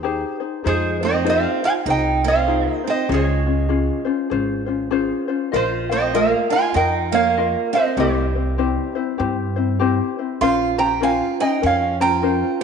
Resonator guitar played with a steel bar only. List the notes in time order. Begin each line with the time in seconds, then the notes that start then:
Already playing: C5
0.67 G#4 C5
1.05 C5 D#5
1.30 C5 F5
1.65 F5 G#5
1.90 D#5 G5
2.28 C#5 F5
2.75 D#5
2.90 C5 D#5
3.14 G#4 C#5
5.56 F4 C5
5.92 C5 D#5
6.16 A#4 F5
6.52 F5 G#5
6.76 D#5 G5
7.14 C#5 F5
7.75 C5 D#5
8.00 G4 C5
10.41 F5 C6
10.78 G5 A#5
11.03 F5 G#5
11.41 D#5 G5
11.66 C#5 F5
12.01 G5 A#5